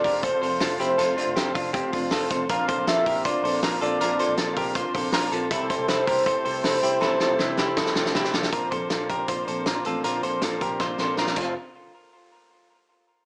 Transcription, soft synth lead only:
Already playing: D5
0.24 C5
0.80 C5
2.50 F5
2.88 E5
3.25 D5
3.82 D5
5.50 A4
5.89 C5
6.06 C5

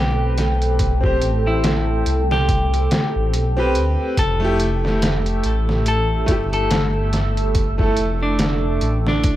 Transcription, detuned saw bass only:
Already playing: B1
1.22 A1
2.06 C2
3.16 A1
3.33 B1
3.75 D2
4.18 F1
5.45 A1
6.28 G1
7.97 F1
8.82 A1

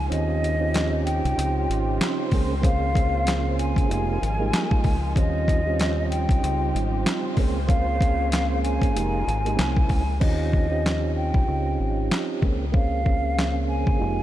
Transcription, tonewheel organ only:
0.10 C4 C#4 D#4 F4 G4
0.59 C4 C#4 D#4 F4 G4
1.36 C4 C#4 D#4 F4 G4
2.32 C#3 A#3 C4 C#4 G#4
2.61 C#3 A#3 C4 C#4 G#4
2.93 C#3 A#3 C4 C#4 G#4
3.88 G#3 A#3 D#4 F4 G4
4.39 G3 G#3 A#3 D#4 F4
5.15 G3 C4 C#4 F4
5.67 G3 C4 C#4 F4
6.39 G3 C4 D#4 F4
7.37 A#3 C4 C#4 G#4
7.67 A#3 C4 C#4 G#4
7.99 A#3 C4 C#4 G#4
8.94 G#3 A#3 D#4 G4
9.45 G#3 A#3 D#4 G4
9.55 A#3 C4 C#4 E4
10.20 C4 C#4 D#4 F4 G4
10.70 C4 C#4 D#4 F4 G4
11.46 C4 C#4 D#4 F4 G4
12.42 C#3 A#3 C4 C#4 G#4
12.72 C#3 A#3 C4 C#4 G#4
13.04 C#3 A#3 C4 C#4 G#4
13.98 G#3 A#3 D#4 F4 G4

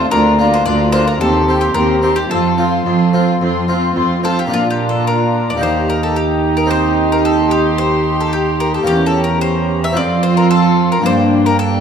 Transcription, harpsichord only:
0.11 D2
0.39 A#3 D4 F4
0.66 D2
0.93 A#3 D4 F4
1.20 D#2
1.48 C4 G4
1.75 D#2
2.03 C4 G4
2.30 F2
2.58 C4 F4
2.86 F2
3.13 C4 F4
3.42 F2
3.68 C4 F4
3.96 F2
4.23 C4 F4
4.47 A#3 D4 F4
4.51 A#2
5.56 A#3 D#4 G4
5.61 D#2
6.66 C4 D#4 G4
8.83 A#3 C#4 G4
8.88 E2
9.92 C4 F4
9.97 F2
11.02 G2 A#3 D4

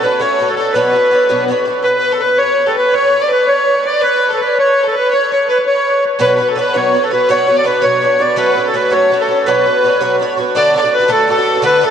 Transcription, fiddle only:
0.03 B4
0.19 C#5
0.49 A4
0.55 A4
0.74 B4
1.83 B4
2.12 A4
2.21 B4
2.38 C#5
2.66 G4 A4
2.76 B4
2.95 C#5
3.21 D5
3.29 B4
3.46 C#5
3.85 D5
4.02 B4
4.30 A4
4.38 B4
4.48 D5
4.55 C#5
4.84 A4
4.92 B4
5.11 C#5
5.30 C#5
5.48 B4
5.66 C#5
6.21 B4
6.35 B4
6.48 A4
6.58 B4
6.74 C#5
7.04 A4
7.12 B4
7.29 C#5
7.57 D5
7.65 B4
7.82 C#5
8.38 B4
8.66 A4
8.75 B4
8.93 C#5
9.22 A4
9.46 B4
10.56 D5
10.76 D5
10.89 B4 C#5
11.10 A4
11.30 A4
11.65 B4
11.84 A4

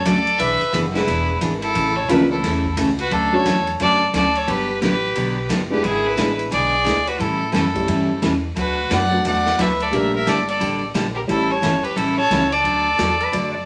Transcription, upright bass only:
0.06 D2
0.40 B1
0.61 muted upright bass stroke
0.74 F#1
1.07 E1
1.41 G#1
1.75 A1
2.09 C#2
2.43 E2
2.77 C#2
3.11 D2
3.46 E2
3.80 F#2
4.13 D2
4.48 G1
4.82 A1
5.16 B1
5.50 F#1
5.85 G#1
6.19 A1
6.53 B1
6.87 D2
7.20 A2
7.54 F#2
7.88 G2
8.22 E2
8.57 D2
8.91 F#2
9.25 E2
9.59 D2
9.93 A#1
10.27 G1
10.61 A1
10.95 A#1
11.29 A1
11.63 G1
11.85 muted upright bass stroke
11.96 A1
12.30 C#2
12.64 D2
12.99 E2
13.33 F#2

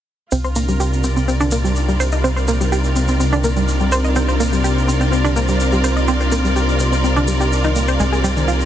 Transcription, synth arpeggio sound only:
0.32 C4
0.44 C5
0.56 A#3
0.69 G3
0.80 G4
1.04 C4
1.17 C4
1.28 C4
1.40 D4
1.52 A#3
1.64 G3
1.88 G3
2.00 C5
2.13 D#5
2.24 C4
2.36 C5
2.48 A#3
2.61 G3
2.72 G4
2.96 C4
3.09 C4
3.20 C4
3.33 D4
3.44 A#3
3.57 G3
3.81 G3
3.92 C5
4.04 D#5
4.16 C4
4.28 C5
4.40 A#3
4.53 G3
4.64 G4
4.88 C4
5.01 C4
5.12 C4
5.24 D4
5.36 A#3
5.49 G3
5.72 G3
5.84 C5
5.96 D#5
6.08 C4
6.21 C5
6.32 A#3
6.45 G3
6.56 G4
6.80 C4
6.93 C4
7.04 C4
7.16 D4
7.28 G3
7.40 G4
7.64 D#4
7.76 A#3
7.88 C5
8.00 G#3
8.12 G#4
8.24 G3
8.36 D#3
8.48 F4

